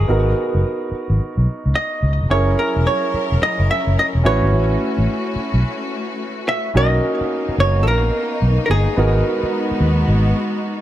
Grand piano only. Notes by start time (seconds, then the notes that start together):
0.08 B3 D#4 F#4 A#4
2.30 C#4 E4 G#4 A#4
4.24 C#4 E4 F#4 B4
6.74 C#4 D#4 F#4 A#4
8.97 B3 D#4 F#4 A#4